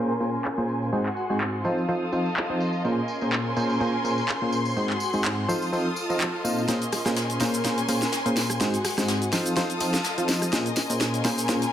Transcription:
Already playing: fm electric piano A#2 C#4 F4 G#4 A#4 C5, string section C#4 A#4 G#5, violin section A#4 G#5 C6
0.21 fm electric piano A#2 C#4 F4 G#4 A#4 C5, tambourine
0.34 tambourine
0.45 clap, tambourine
0.58 fm electric piano A#2 C#4 F4 G#4 A#4 C5
0.69 tambourine
0.82 tambourine
0.92 fm electric piano G#2 C4 D#4 F#4 G#4 C5, string section F#4, violin section G#4 F#5 C6, tambourine
1.06 clap
1.17 tambourine
1.30 fm electric piano G#2 C4 D#4 F#4 G#4 C5, tambourine
1.41 clap, tambourine
1.64 fm electric piano F3 C4 D#4 F4 A4 C5, string section F4, violin section A4 F5 D#6, tambourine
1.78 tambourine
1.88 fm electric piano F3 C4 D#4 F4 A4 C5, tambourine
2.12 fm electric piano F3 C4 D#4 F4 A4 C5, tambourine
2.19 string section D#5 A5
2.25 tambourine
2.36 clap, tambourine
2.50 fm electric piano F3 C4 D#4 F4 A4 C5
2.60 tambourine
2.73 tambourine
2.85 fm electric piano A#2 C#4 F4 G#4 A#4 C5, string section C#4, violin section C#4 A#4 G#5 C6, tambourine
3.07 string section G#5, tambourine
3.12 string section C6
3.21 fm electric piano A#2 C#4 F4 G#4 A#4 C5, tambourine
3.32 clap, tambourine
3.38 string section A#4
3.57 fm electric piano A#2 C#4 F4 G#4 A#4 C5, tambourine
3.69 tambourine
3.80 fm electric piano A#2 C#4 F4 G#4 A#4 C5, tambourine
4.04 fm electric piano A#2 C#4 F4 G#4 A#4 C5, tambourine
4.18 tambourine
4.28 clap, tambourine
4.42 fm electric piano A#2 C#4 F4 G#4 A#4 C5
4.53 tambourine
4.65 tambourine
4.76 fm electric piano G#2 C4 D#4 F#4 G#4 C5, string section F#4, violin section G#4 F#5, tambourine
4.90 clap
5.00 tambourine
5.13 fm electric piano G#2 C4 D#4 F#4 G#4 C5, tambourine
5.25 clap
5.48 fm electric piano F3 C4 D#4 F4 A4 C5, string section F4, violin section A4 F5 D#6, tambourine
5.62 tambourine
5.72 fm electric piano F3 C4 D#4 F4 A4 C5, tambourine
5.96 tambourine
6.03 string section D#5 A5
6.10 fm electric piano F3 C4 D#4 F4 A4 D#5, tambourine
6.21 clap
6.44 fm electric piano A#2 C4 D#4 F4 A4 C5, tambourine
6.58 tambourine
6.68 fm electric piano A#2 C#4 F4 G#4 A#4 C5, string section C#4, violin section A#4 G#5 C6, snare, closed hi-hat, tambourine, shaker
6.81 closed hi-hat, shaker
6.92 cross-stick, closed hi-hat, open hi-hat, tambourine
7.06 fm electric piano A#2 C#4 F4 G#4 A#4 C5, cross-stick, snare, closed hi-hat, tambourine, shaker
7.16 snare, closed hi-hat, tambourine, shaker
7.26 string section A#4, closed hi-hat, shaker
7.40 fm electric piano A#2 C#4 F4 G#4 A#4 C5, snare, closed hi-hat, open hi-hat, tambourine
7.54 string section G#5, closed hi-hat, tambourine, shaker
7.64 fm electric piano A#2 C#4 F4 G#4 A#4 C5, snare, closed hi-hat, tambourine, shaker
7.78 closed hi-hat, shaker
7.88 fm electric piano A#2 C#4 F4 G#4 A#4 C5, closed hi-hat, open hi-hat, tambourine
8.02 snare, closed hi-hat, tambourine, shaker
8.12 snare, closed hi-hat, tambourine, shaker
8.26 fm electric piano A#2 C#4 F4 G#4 A#4 C5, closed hi-hat, shaker
8.36 snare, closed hi-hat, open hi-hat, tambourine
8.50 cross-stick, closed hi-hat, tambourine, shaker
8.60 fm electric piano G#2 C4 D#4 F#4 G#4 C5, string section F#4, violin section G#4 F#5, snare, closed hi-hat, tambourine, shaker
8.73 closed hi-hat, shaker
8.85 cross-stick, snare, closed hi-hat, open hi-hat, tambourine
8.98 fm electric piano G#2 C4 D#4 F#4 G#4 C5, cross-stick, snare, closed hi-hat, tambourine, shaker
9.08 snare, closed hi-hat, tambourine, shaker
9.22 closed hi-hat, shaker
9.32 fm electric piano F3 C4 D#4 F4 A4 C5, string section F4, violin section A4 F5 D#6, snare, closed hi-hat, open hi-hat, tambourine
9.46 closed hi-hat, tambourine, shaker
9.56 fm electric piano F3 C4 D#4 F4 A4 C5, snare, closed hi-hat, tambourine, shaker
9.69 string section A5, closed hi-hat, shaker
9.80 fm electric piano F3 C4 D#4 F4 A4 C5, closed hi-hat, open hi-hat, tambourine
9.87 string section D#5
9.93 snare, closed hi-hat, tambourine, shaker
10.04 snare, closed hi-hat, tambourine, shaker
10.17 fm electric piano F3 C4 D#4 F4 A4 C5, closed hi-hat, shaker
10.28 snare, closed hi-hat, open hi-hat, tambourine
10.42 cross-stick, closed hi-hat, tambourine, shaker
10.52 fm electric piano A#2 C#4 F4 G#4 A#4 C5, string section C#4, violin section A#4 G#5 C6, snare, closed hi-hat, tambourine, shaker
10.66 closed hi-hat, shaker
10.76 snare, closed hi-hat, open hi-hat, tambourine
10.89 fm electric piano A#2 C#4 F4 G#4 A#4 C5, closed hi-hat, tambourine, shaker
11.00 snare, closed hi-hat, tambourine, shaker
11.14 closed hi-hat, shaker
11.25 fm electric piano A#2 C#4 F4 G#4 A#4 C5, snare, closed hi-hat, open hi-hat, tambourine
11.38 string section G#5 A#5, closed hi-hat, tambourine, shaker
11.48 fm electric piano A#2 C#4 F4 G#4 A#4 C5, snare, closed hi-hat, tambourine, shaker
11.62 closed hi-hat, shaker

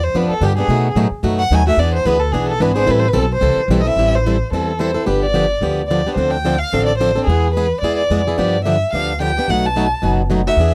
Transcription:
Already playing: upright bass E2
0.04 violin C5
0.14 upright bass F2, steel-string acoustic guitar D3 F3 B3 D4 G4, violin B4
0.29 violin A4, muted upright bass stroke
0.41 upright bass G2, steel-string acoustic guitar D3 F3 B3 D4 G4
0.45 violin G4
0.57 steel-string acoustic guitar B3 D4 G4, violin G#4
0.68 upright bass B2, steel-string acoustic guitar B2 F#3 A3 D#4 F#4
0.95 upright bass A2, steel-string acoustic guitar B2 F#3 A3 D#4 F#4
1.11 muted upright bass stroke
1.23 upright bass F#2, steel-string acoustic guitar B2 F#3 A3 D#4 F#4
1.39 violin F#5
1.50 upright bass D#2, steel-string acoustic guitar B2 F#3 A3 D#4 F#4, violin G#5
1.67 steel-string acoustic guitar A3 D#4 F#4, violin E5
1.77 upright bass E2, steel-string acoustic guitar E3 B3 D4 G#4, violin D5
1.94 violin C5
2.05 upright bass D2, steel-string acoustic guitar E3 B3 D4 G#4, violin B4
2.20 violin A4
2.32 upright bass B1, steel-string acoustic guitar E3 B3 D4 G#4, violin G#4
2.49 violin A4
2.60 upright bass G#1, steel-string acoustic guitar E3 B3 D4 G#4, violin B4
2.76 steel-string acoustic guitar B3 D4 G#4, violin C5
2.86 upright bass A1, steel-string acoustic guitar E3 G3 C4 E4 A4
2.90 violin B4
2.99 violin C5
3.08 violin B4
3.13 upright bass B1, steel-string acoustic guitar E3 G3 C4 E4 A4
3.18 violin A4
3.35 violin C5
3.41 upright bass C2, steel-string acoustic guitar E3 G3 C4 E4 A4
3.56 muted upright bass stroke
3.68 upright bass B1, steel-string acoustic guitar E3 G3 C4 E4 A4
3.80 steel-string acoustic guitar A4, violin D#5
3.85 steel-string acoustic guitar C4 E4, violin E5
3.96 upright bass A1, steel-string acoustic guitar E3 G3 C4 E4 A4
4.15 violin C5
4.26 steel-string acoustic guitar E3 G3 C4 E4 A4
4.51 upright bass E2, steel-string acoustic guitar E3 G3 C4 E4 A4, violin A4
4.79 steel-string acoustic guitar E3 G3 C4 E4 A4, violin C5
4.94 steel-string acoustic guitar C4 E4 A4
5.06 upright bass G1, steel-string acoustic guitar D3 F3 B3 D4 G4, violin B4
5.23 violin D5
5.34 steel-string acoustic guitar D3 F3 B3 D4 G4
5.61 upright bass D2, steel-string acoustic guitar D3 F3 B3 D4 G4
5.87 steel-string acoustic guitar D3 F3 B3 D4, violin D5
5.91 steel-string acoustic guitar G4
6.06 steel-string acoustic guitar B3 D4 G4
6.15 upright bass D2, steel-string acoustic guitar D3 F3 C4 D4 A4, violin C5
6.30 violin G5
6.45 steel-string acoustic guitar D3 F3 C4 D4 A4
6.59 violin F5
6.73 upright bass A1, steel-string acoustic guitar D3 F3 C4 D4 A4
6.86 violin D5
6.98 steel-string acoustic guitar D3 F3 C4 D4 A4, violin C5
7.15 steel-string acoustic guitar C4 D4 A4
7.25 upright bass E2, steel-string acoustic guitar E3, violin G#4
7.29 steel-string acoustic guitar G#3 B3 E4 G#4
7.54 steel-string acoustic guitar E3 G#3 B3 E4 G#4, violin B4
7.81 upright bass E2, steel-string acoustic guitar E3 G#3 B3 E4 G#4, violin D5
7.97 violin D5
8.10 upright bass F2, steel-string acoustic guitar E3 G#3 B3 E4 G#4
8.27 steel-string acoustic guitar B3 E4 G#4
8.38 upright bass G2, steel-string acoustic guitar D3 F3 B3 D4 G4, violin D5
8.65 steel-string acoustic guitar D3 F3 B3 D4 G4, violin E5
8.93 upright bass D2, steel-string acoustic guitar D3 F3 B3 D4 G4, violin F5
9.20 steel-string acoustic guitar D3 F3 B3 D4 G4, violin G5
9.37 steel-string acoustic guitar B3 D4 G4
9.48 upright bass B1, steel-string acoustic guitar B2 F#3 A3 D#4 F#4, violin F#5
9.66 violin A5
9.76 steel-string acoustic guitar B2 F#3 A3 D#4 F#4
10.02 upright bass F#1, steel-string acoustic guitar B2 F#3 A3 D#4 F#4
10.30 steel-string acoustic guitar B2 F#3 A3 D#4 F#4
10.47 steel-string acoustic guitar A3 D#4 F#4, violin E5
10.57 upright bass E2, steel-string acoustic guitar E3 B3 D4
10.61 steel-string acoustic guitar G#4

